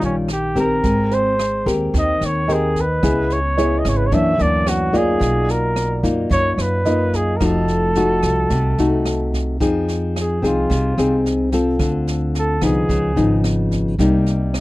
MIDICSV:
0, 0, Header, 1, 6, 480
1, 0, Start_track
1, 0, Tempo, 548446
1, 729, Time_signature, 4, 2, 24, 8
1, 12780, End_track
2, 0, Start_track
2, 0, Title_t, "Grand piano"
2, 0, Program_c, 0, 0
2, 879, Control_c, 0, 64, 127
2, 975, Note_on_c, 0, 72, 51
2, 1907, Note_off_c, 0, 72, 0
2, 2170, Note_on_c, 0, 75, 43
2, 2661, Control_c, 0, 64, 0
2, 2793, Control_c, 0, 64, 127
2, 2854, Note_off_c, 0, 75, 0
2, 3130, Note_on_c, 0, 73, 58
2, 3621, Control_c, 0, 64, 0
2, 3770, Control_c, 0, 64, 127
2, 3814, Note_off_c, 0, 73, 0
2, 4320, Note_on_c, 0, 74, 54
2, 4579, Control_c, 0, 64, 0
2, 4743, Control_c, 0, 64, 127
2, 4770, Note_off_c, 0, 74, 0
2, 5999, Note_on_c, 0, 75, 48
2, 6497, Control_c, 0, 64, 0
2, 6687, Note_off_c, 0, 75, 0
2, 12780, End_track
3, 0, Start_track
3, 0, Title_t, "Flugelhorn"
3, 0, Program_c, 1, 56
3, 40, Note_on_c, 1, 61, 69
3, 141, Note_off_c, 1, 61, 0
3, 286, Note_on_c, 1, 67, 84
3, 492, Note_off_c, 1, 67, 0
3, 525, Note_on_c, 1, 70, 91
3, 996, Note_on_c, 1, 72, 78
3, 1009, Note_off_c, 1, 70, 0
3, 1467, Note_off_c, 1, 72, 0
3, 1732, Note_on_c, 1, 75, 91
3, 1973, Note_on_c, 1, 73, 75
3, 1987, Note_off_c, 1, 75, 0
3, 2212, Note_on_c, 1, 68, 83
3, 2225, Note_off_c, 1, 73, 0
3, 2452, Note_on_c, 1, 71, 83
3, 2466, Note_off_c, 1, 68, 0
3, 2914, Note_on_c, 1, 73, 97
3, 2927, Note_off_c, 1, 71, 0
3, 3314, Note_on_c, 1, 75, 76
3, 3327, Note_off_c, 1, 73, 0
3, 3403, Note_on_c, 1, 73, 76
3, 3417, Note_off_c, 1, 75, 0
3, 3473, Note_on_c, 1, 71, 86
3, 3486, Note_off_c, 1, 73, 0
3, 3558, Note_on_c, 1, 73, 74
3, 3571, Note_off_c, 1, 71, 0
3, 3622, Note_on_c, 1, 76, 108
3, 3635, Note_off_c, 1, 73, 0
3, 3864, Note_on_c, 1, 74, 95
3, 3877, Note_off_c, 1, 76, 0
3, 4101, Note_on_c, 1, 66, 81
3, 4114, Note_off_c, 1, 74, 0
3, 4349, Note_on_c, 1, 68, 88
3, 4362, Note_off_c, 1, 66, 0
3, 4820, Note_on_c, 1, 70, 78
3, 4833, Note_off_c, 1, 68, 0
3, 5298, Note_off_c, 1, 70, 0
3, 5537, Note_on_c, 1, 73, 108
3, 5725, Note_off_c, 1, 73, 0
3, 5725, Note_on_c, 1, 73, 66
3, 5788, Note_on_c, 1, 71, 93
3, 5801, Note_off_c, 1, 73, 0
3, 6263, Note_on_c, 1, 68, 77
3, 6276, Note_off_c, 1, 71, 0
3, 6446, Note_on_c, 1, 70, 58
3, 6459, Note_off_c, 1, 68, 0
3, 6520, Note_on_c, 1, 69, 94
3, 6534, Note_off_c, 1, 70, 0
3, 8183, Note_off_c, 1, 69, 0
3, 8928, Note_on_c, 1, 68, 60
3, 9132, Note_off_c, 1, 68, 0
3, 9157, Note_on_c, 1, 65, 64
3, 9827, Note_off_c, 1, 65, 0
3, 10842, Note_on_c, 1, 69, 82
3, 11048, Note_off_c, 1, 69, 0
3, 11065, Note_on_c, 1, 68, 75
3, 11740, Note_off_c, 1, 68, 0
3, 12780, End_track
4, 0, Start_track
4, 0, Title_t, "Nylon-string guitar"
4, 0, Program_c, 2, 24
4, 0, Note_on_c, 2, 51, 53
4, 0, Note_on_c, 2, 55, 50
4, 0, Note_on_c, 2, 61, 53
4, 0, Note_on_c, 2, 65, 61
4, 248, Note_off_c, 2, 55, 0
4, 248, Note_off_c, 2, 61, 0
4, 251, Note_off_c, 2, 65, 0
4, 487, Note_on_c, 2, 60, 71
4, 495, Note_on_c, 2, 67, 59
4, 499, Note_on_c, 2, 70, 62
4, 704, Note_off_c, 2, 51, 0
4, 735, Note_on_c, 2, 56, 50
4, 1170, Note_off_c, 2, 60, 0
4, 1174, Note_off_c, 2, 67, 0
4, 1176, Note_off_c, 2, 70, 0
4, 1451, Note_on_c, 2, 60, 50
4, 1458, Note_on_c, 2, 67, 55
4, 1458, Note_on_c, 2, 70, 60
4, 1668, Note_off_c, 2, 56, 0
4, 1699, Note_on_c, 2, 51, 52
4, 2132, Note_off_c, 2, 60, 0
4, 2134, Note_off_c, 2, 70, 0
4, 2135, Note_off_c, 2, 67, 0
4, 2172, Note_on_c, 2, 60, 49
4, 2177, Note_on_c, 2, 67, 56
4, 2178, Note_on_c, 2, 70, 61
4, 2480, Note_off_c, 2, 60, 0
4, 2482, Note_off_c, 2, 67, 0
4, 2482, Note_off_c, 2, 70, 0
4, 2630, Note_off_c, 2, 51, 0
4, 2653, Note_on_c, 2, 49, 47
4, 2654, Note_on_c, 2, 59, 56
4, 2659, Note_on_c, 2, 64, 44
4, 2659, Note_on_c, 2, 68, 55
4, 2960, Note_off_c, 2, 59, 0
4, 2962, Note_off_c, 2, 68, 0
4, 2963, Note_off_c, 2, 64, 0
4, 3131, Note_on_c, 2, 59, 56
4, 3136, Note_on_c, 2, 64, 55
4, 3140, Note_on_c, 2, 68, 53
4, 3587, Note_off_c, 2, 49, 0
4, 3591, Note_off_c, 2, 59, 0
4, 3593, Note_off_c, 2, 64, 0
4, 3595, Note_off_c, 2, 68, 0
4, 3605, Note_on_c, 2, 42, 57
4, 3605, Note_on_c, 2, 52, 53
4, 3610, Note_on_c, 2, 58, 57
4, 3614, Note_on_c, 2, 62, 64
4, 3807, Note_off_c, 2, 52, 0
4, 3811, Note_off_c, 2, 58, 0
4, 3813, Note_off_c, 2, 62, 0
4, 3833, Note_on_c, 2, 52, 61
4, 3839, Note_on_c, 2, 58, 56
4, 3841, Note_on_c, 2, 62, 62
4, 4283, Note_off_c, 2, 52, 0
4, 4284, Note_off_c, 2, 58, 0
4, 4286, Note_off_c, 2, 62, 0
4, 4314, Note_on_c, 2, 58, 59
4, 4318, Note_on_c, 2, 63, 69
4, 4321, Note_on_c, 2, 65, 66
4, 4543, Note_off_c, 2, 42, 0
4, 4548, Note_on_c, 2, 47, 46
4, 5242, Note_off_c, 2, 58, 0
4, 5244, Note_off_c, 2, 63, 0
4, 5246, Note_off_c, 2, 65, 0
4, 5282, Note_on_c, 2, 58, 63
4, 5286, Note_on_c, 2, 63, 60
4, 5287, Note_on_c, 2, 65, 60
4, 5493, Note_off_c, 2, 47, 0
4, 5510, Note_on_c, 2, 42, 56
4, 5966, Note_off_c, 2, 63, 0
4, 5967, Note_off_c, 2, 58, 0
4, 5969, Note_off_c, 2, 65, 0
4, 6002, Note_on_c, 2, 58, 55
4, 6011, Note_on_c, 2, 63, 57
4, 6012, Note_on_c, 2, 65, 67
4, 6446, Note_off_c, 2, 58, 0
4, 6450, Note_off_c, 2, 65, 0
4, 6451, Note_off_c, 2, 63, 0
4, 6454, Note_off_c, 2, 42, 0
4, 6481, Note_on_c, 2, 53, 48
4, 6483, Note_on_c, 2, 57, 48
4, 6487, Note_on_c, 2, 63, 54
4, 6493, Note_on_c, 2, 66, 62
4, 6925, Note_off_c, 2, 57, 0
4, 6928, Note_off_c, 2, 63, 0
4, 6931, Note_off_c, 2, 66, 0
4, 6969, Note_on_c, 2, 57, 53
4, 6974, Note_on_c, 2, 63, 52
4, 6978, Note_on_c, 2, 66, 64
4, 7420, Note_off_c, 2, 53, 0
4, 7454, Note_on_c, 2, 48, 59
4, 7649, Note_off_c, 2, 57, 0
4, 7652, Note_off_c, 2, 63, 0
4, 7653, Note_off_c, 2, 66, 0
4, 7695, Note_on_c, 2, 57, 57
4, 7701, Note_on_c, 2, 63, 60
4, 7702, Note_on_c, 2, 66, 69
4, 8372, Note_off_c, 2, 57, 0
4, 8374, Note_off_c, 2, 63, 0
4, 8375, Note_off_c, 2, 66, 0
4, 8386, Note_off_c, 2, 48, 0
4, 8406, Note_on_c, 2, 53, 53
4, 8409, Note_on_c, 2, 60, 47
4, 8411, Note_on_c, 2, 63, 51
4, 8416, Note_on_c, 2, 68, 50
4, 9089, Note_off_c, 2, 60, 0
4, 9089, Note_off_c, 2, 63, 0
4, 9093, Note_off_c, 2, 68, 0
4, 9122, Note_on_c, 2, 60, 61
4, 9132, Note_on_c, 2, 63, 58
4, 9137, Note_on_c, 2, 68, 64
4, 9342, Note_off_c, 2, 53, 0
4, 9363, Note_on_c, 2, 48, 57
4, 9565, Note_off_c, 2, 60, 0
4, 9571, Note_off_c, 2, 63, 0
4, 9572, Note_off_c, 2, 68, 0
4, 9611, Note_on_c, 2, 60, 60
4, 9617, Note_on_c, 2, 63, 59
4, 9622, Note_on_c, 2, 68, 60
4, 10050, Note_off_c, 2, 60, 0
4, 10052, Note_off_c, 2, 63, 0
4, 10055, Note_off_c, 2, 68, 0
4, 10089, Note_on_c, 2, 60, 64
4, 10094, Note_on_c, 2, 65, 63
4, 10098, Note_on_c, 2, 69, 65
4, 10300, Note_off_c, 2, 48, 0
4, 10328, Note_on_c, 2, 50, 50
4, 11009, Note_off_c, 2, 60, 0
4, 11011, Note_off_c, 2, 65, 0
4, 11013, Note_off_c, 2, 69, 0
4, 11040, Note_on_c, 2, 53, 51
4, 11046, Note_on_c, 2, 59, 56
4, 11052, Note_on_c, 2, 63, 64
4, 11263, Note_off_c, 2, 50, 0
4, 11289, Note_on_c, 2, 49, 56
4, 11484, Note_off_c, 2, 53, 0
4, 11488, Note_off_c, 2, 59, 0
4, 11488, Note_off_c, 2, 63, 0
4, 11517, Note_on_c, 2, 53, 56
4, 11521, Note_on_c, 2, 59, 57
4, 11526, Note_on_c, 2, 63, 67
4, 12203, Note_off_c, 2, 53, 0
4, 12205, Note_off_c, 2, 59, 0
4, 12206, Note_off_c, 2, 63, 0
4, 12223, Note_off_c, 2, 49, 0
4, 12247, Note_on_c, 2, 48, 54
4, 12252, Note_on_c, 2, 55, 51
4, 12252, Note_on_c, 2, 58, 49
4, 12257, Note_on_c, 2, 63, 57
4, 12780, Note_off_c, 2, 48, 0
4, 12780, Note_off_c, 2, 55, 0
4, 12780, Note_off_c, 2, 58, 0
4, 12780, Note_off_c, 2, 63, 0
4, 12780, End_track
5, 0, Start_track
5, 0, Title_t, "Upright bass"
5, 0, Program_c, 3, 32
5, 16, Note_on_c, 3, 34, 68
5, 698, Note_off_c, 3, 34, 0
5, 734, Note_on_c, 3, 32, 84
5, 1417, Note_off_c, 3, 32, 0
5, 1455, Note_on_c, 3, 39, 92
5, 1675, Note_off_c, 3, 39, 0
5, 1696, Note_on_c, 3, 39, 84
5, 1916, Note_off_c, 3, 39, 0
5, 1936, Note_on_c, 3, 39, 79
5, 2617, Note_off_c, 3, 39, 0
5, 2652, Note_on_c, 3, 37, 92
5, 3335, Note_off_c, 3, 37, 0
5, 3369, Note_on_c, 3, 32, 83
5, 3592, Note_off_c, 3, 32, 0
5, 3607, Note_on_c, 3, 42, 96
5, 3831, Note_off_c, 3, 42, 0
5, 3854, Note_on_c, 3, 38, 80
5, 4536, Note_off_c, 3, 38, 0
5, 4559, Note_on_c, 3, 35, 97
5, 5248, Note_off_c, 3, 35, 0
5, 5280, Note_on_c, 3, 42, 90
5, 5507, Note_off_c, 3, 42, 0
5, 5521, Note_on_c, 3, 42, 98
5, 5747, Note_off_c, 3, 42, 0
5, 5755, Note_on_c, 3, 42, 78
5, 6446, Note_off_c, 3, 42, 0
5, 6483, Note_on_c, 3, 29, 97
5, 7170, Note_off_c, 3, 29, 0
5, 7205, Note_on_c, 3, 36, 87
5, 7429, Note_off_c, 3, 36, 0
5, 7441, Note_on_c, 3, 36, 84
5, 7667, Note_off_c, 3, 36, 0
5, 7688, Note_on_c, 3, 36, 75
5, 8372, Note_off_c, 3, 36, 0
5, 8407, Note_on_c, 3, 41, 84
5, 9091, Note_off_c, 3, 41, 0
5, 9128, Note_on_c, 3, 36, 78
5, 9350, Note_off_c, 3, 36, 0
5, 9371, Note_on_c, 3, 36, 81
5, 9591, Note_off_c, 3, 36, 0
5, 9604, Note_on_c, 3, 36, 79
5, 10290, Note_off_c, 3, 36, 0
5, 10322, Note_on_c, 3, 38, 83
5, 11009, Note_off_c, 3, 38, 0
5, 11043, Note_on_c, 3, 36, 88
5, 11268, Note_off_c, 3, 36, 0
5, 11283, Note_on_c, 3, 37, 83
5, 11508, Note_off_c, 3, 37, 0
5, 11526, Note_on_c, 3, 32, 88
5, 12211, Note_off_c, 3, 32, 0
5, 12241, Note_on_c, 3, 36, 84
5, 12780, Note_off_c, 3, 36, 0
5, 12780, End_track
6, 0, Start_track
6, 0, Title_t, "Drums"
6, 12, Note_on_c, 9, 38, 22
6, 99, Note_off_c, 9, 38, 0
6, 249, Note_on_c, 9, 37, 54
6, 249, Note_on_c, 9, 38, 23
6, 337, Note_off_c, 9, 37, 0
6, 337, Note_off_c, 9, 38, 0
6, 490, Note_on_c, 9, 36, 24
6, 491, Note_on_c, 9, 38, 23
6, 578, Note_off_c, 9, 36, 0
6, 579, Note_off_c, 9, 38, 0
6, 732, Note_on_c, 9, 36, 60
6, 732, Note_on_c, 9, 38, 22
6, 820, Note_off_c, 9, 36, 0
6, 820, Note_off_c, 9, 38, 0
6, 973, Note_on_c, 9, 38, 23
6, 1061, Note_off_c, 9, 38, 0
6, 1219, Note_on_c, 9, 37, 68
6, 1219, Note_on_c, 9, 38, 24
6, 1307, Note_off_c, 9, 37, 0
6, 1307, Note_off_c, 9, 38, 0
6, 1455, Note_on_c, 9, 36, 24
6, 1467, Note_on_c, 9, 38, 24
6, 1543, Note_off_c, 9, 36, 0
6, 1554, Note_off_c, 9, 38, 0
6, 1696, Note_on_c, 9, 36, 61
6, 1700, Note_on_c, 9, 38, 24
6, 1783, Note_off_c, 9, 36, 0
6, 1787, Note_off_c, 9, 38, 0
6, 1940, Note_on_c, 9, 37, 55
6, 1940, Note_on_c, 9, 38, 20
6, 2027, Note_off_c, 9, 37, 0
6, 2027, Note_off_c, 9, 38, 0
6, 2181, Note_on_c, 9, 38, 24
6, 2268, Note_off_c, 9, 38, 0
6, 2410, Note_on_c, 9, 36, 25
6, 2416, Note_on_c, 9, 38, 24
6, 2498, Note_off_c, 9, 36, 0
6, 2503, Note_off_c, 9, 38, 0
6, 2650, Note_on_c, 9, 36, 56
6, 2652, Note_on_c, 9, 37, 57
6, 2652, Note_on_c, 9, 38, 24
6, 2737, Note_off_c, 9, 36, 0
6, 2739, Note_off_c, 9, 37, 0
6, 2739, Note_off_c, 9, 38, 0
6, 2890, Note_on_c, 9, 38, 25
6, 2977, Note_off_c, 9, 38, 0
6, 3134, Note_on_c, 9, 38, 24
6, 3221, Note_off_c, 9, 38, 0
6, 3365, Note_on_c, 9, 36, 26
6, 3369, Note_on_c, 9, 37, 59
6, 3369, Note_on_c, 9, 38, 24
6, 3452, Note_off_c, 9, 36, 0
6, 3457, Note_off_c, 9, 37, 0
6, 3457, Note_off_c, 9, 38, 0
6, 3604, Note_on_c, 9, 36, 60
6, 3607, Note_on_c, 9, 38, 25
6, 3691, Note_off_c, 9, 36, 0
6, 3694, Note_off_c, 9, 38, 0
6, 3844, Note_on_c, 9, 38, 23
6, 3931, Note_off_c, 9, 38, 0
6, 4084, Note_on_c, 9, 37, 57
6, 4084, Note_on_c, 9, 38, 25
6, 4171, Note_off_c, 9, 37, 0
6, 4171, Note_off_c, 9, 38, 0
6, 4320, Note_on_c, 9, 36, 20
6, 4322, Note_on_c, 9, 38, 21
6, 4407, Note_off_c, 9, 36, 0
6, 4410, Note_off_c, 9, 38, 0
6, 4558, Note_on_c, 9, 36, 56
6, 4561, Note_on_c, 9, 38, 24
6, 4646, Note_off_c, 9, 36, 0
6, 4648, Note_off_c, 9, 38, 0
6, 4801, Note_on_c, 9, 38, 24
6, 4889, Note_off_c, 9, 38, 0
6, 5042, Note_on_c, 9, 37, 65
6, 5042, Note_on_c, 9, 38, 25
6, 5130, Note_off_c, 9, 37, 0
6, 5130, Note_off_c, 9, 38, 0
6, 5279, Note_on_c, 9, 36, 23
6, 5286, Note_on_c, 9, 38, 24
6, 5367, Note_off_c, 9, 36, 0
6, 5374, Note_off_c, 9, 38, 0
6, 5519, Note_on_c, 9, 36, 61
6, 5523, Note_on_c, 9, 38, 24
6, 5607, Note_off_c, 9, 36, 0
6, 5610, Note_off_c, 9, 38, 0
6, 5764, Note_on_c, 9, 37, 60
6, 5764, Note_on_c, 9, 38, 21
6, 5851, Note_off_c, 9, 37, 0
6, 5851, Note_off_c, 9, 38, 0
6, 5997, Note_on_c, 9, 38, 22
6, 6084, Note_off_c, 9, 38, 0
6, 6241, Note_on_c, 9, 36, 22
6, 6244, Note_on_c, 9, 38, 23
6, 6328, Note_off_c, 9, 36, 0
6, 6332, Note_off_c, 9, 38, 0
6, 6482, Note_on_c, 9, 36, 54
6, 6482, Note_on_c, 9, 37, 62
6, 6482, Note_on_c, 9, 38, 25
6, 6569, Note_off_c, 9, 37, 0
6, 6569, Note_off_c, 9, 38, 0
6, 6570, Note_off_c, 9, 36, 0
6, 6722, Note_on_c, 9, 38, 21
6, 6809, Note_off_c, 9, 38, 0
6, 6960, Note_on_c, 9, 38, 26
6, 7047, Note_off_c, 9, 38, 0
6, 7200, Note_on_c, 9, 37, 62
6, 7200, Note_on_c, 9, 38, 23
6, 7201, Note_on_c, 9, 36, 25
6, 7287, Note_off_c, 9, 37, 0
6, 7287, Note_off_c, 9, 38, 0
6, 7289, Note_off_c, 9, 36, 0
6, 7440, Note_on_c, 9, 38, 27
6, 7442, Note_on_c, 9, 36, 56
6, 7528, Note_off_c, 9, 38, 0
6, 7529, Note_off_c, 9, 36, 0
6, 7687, Note_on_c, 9, 38, 25
6, 7774, Note_off_c, 9, 38, 0
6, 7925, Note_on_c, 9, 37, 62
6, 7925, Note_on_c, 9, 38, 25
6, 8012, Note_off_c, 9, 37, 0
6, 8012, Note_off_c, 9, 38, 0
6, 8167, Note_on_c, 9, 36, 25
6, 8174, Note_on_c, 9, 38, 25
6, 8254, Note_off_c, 9, 36, 0
6, 8262, Note_off_c, 9, 38, 0
6, 8406, Note_on_c, 9, 36, 60
6, 8408, Note_on_c, 9, 38, 23
6, 8493, Note_off_c, 9, 36, 0
6, 8495, Note_off_c, 9, 38, 0
6, 8650, Note_on_c, 9, 38, 23
6, 8737, Note_off_c, 9, 38, 0
6, 8894, Note_on_c, 9, 37, 64
6, 8894, Note_on_c, 9, 38, 26
6, 8982, Note_off_c, 9, 37, 0
6, 8982, Note_off_c, 9, 38, 0
6, 9128, Note_on_c, 9, 36, 23
6, 9138, Note_on_c, 9, 38, 22
6, 9215, Note_off_c, 9, 36, 0
6, 9225, Note_off_c, 9, 38, 0
6, 9368, Note_on_c, 9, 36, 61
6, 9371, Note_on_c, 9, 38, 27
6, 9455, Note_off_c, 9, 36, 0
6, 9458, Note_off_c, 9, 38, 0
6, 9610, Note_on_c, 9, 37, 54
6, 9610, Note_on_c, 9, 38, 22
6, 9698, Note_off_c, 9, 37, 0
6, 9698, Note_off_c, 9, 38, 0
6, 9853, Note_on_c, 9, 38, 22
6, 9940, Note_off_c, 9, 38, 0
6, 10083, Note_on_c, 9, 36, 22
6, 10084, Note_on_c, 9, 38, 22
6, 10170, Note_off_c, 9, 36, 0
6, 10172, Note_off_c, 9, 38, 0
6, 10321, Note_on_c, 9, 36, 62
6, 10323, Note_on_c, 9, 37, 54
6, 10323, Note_on_c, 9, 38, 23
6, 10409, Note_off_c, 9, 36, 0
6, 10410, Note_off_c, 9, 37, 0
6, 10410, Note_off_c, 9, 38, 0
6, 10567, Note_on_c, 9, 38, 23
6, 10654, Note_off_c, 9, 38, 0
6, 10808, Note_on_c, 9, 38, 26
6, 10895, Note_off_c, 9, 38, 0
6, 11040, Note_on_c, 9, 37, 59
6, 11040, Note_on_c, 9, 38, 26
6, 11041, Note_on_c, 9, 36, 25
6, 11127, Note_off_c, 9, 37, 0
6, 11127, Note_off_c, 9, 38, 0
6, 11128, Note_off_c, 9, 36, 0
6, 11282, Note_on_c, 9, 36, 63
6, 11287, Note_on_c, 9, 38, 24
6, 11369, Note_off_c, 9, 36, 0
6, 11374, Note_off_c, 9, 38, 0
6, 11524, Note_on_c, 9, 38, 23
6, 11612, Note_off_c, 9, 38, 0
6, 11763, Note_on_c, 9, 37, 59
6, 11763, Note_on_c, 9, 38, 25
6, 11851, Note_off_c, 9, 37, 0
6, 11851, Note_off_c, 9, 38, 0
6, 11999, Note_on_c, 9, 36, 23
6, 12003, Note_on_c, 9, 38, 21
6, 12087, Note_off_c, 9, 36, 0
6, 12090, Note_off_c, 9, 38, 0
6, 12241, Note_on_c, 9, 36, 57
6, 12245, Note_on_c, 9, 38, 24
6, 12328, Note_off_c, 9, 36, 0
6, 12332, Note_off_c, 9, 38, 0
6, 12483, Note_on_c, 9, 38, 23
6, 12571, Note_off_c, 9, 38, 0
6, 12726, Note_on_c, 9, 37, 65
6, 12726, Note_on_c, 9, 38, 26
6, 12780, Note_off_c, 9, 37, 0
6, 12780, Note_off_c, 9, 38, 0
6, 12780, End_track
0, 0, End_of_file